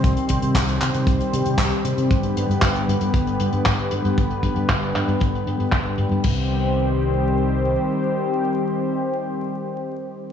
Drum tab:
CC |----------------|----------------|----------------|x---------------|
HH |xxxxxxxxxxxxxxxx|xxxxxxxxxxxx-xxx|xxxxxxxxxxxxxxxx|----------------|
CP |----x-x-----x---|----x-------x---|----x-x-----x---|----------------|
BD |o-o-o---o---o---|o---o---o---o---|o-o-o---o---o---|o---------------|

CC |----------------|
HH |----------------|
CP |----------------|
BD |----------------|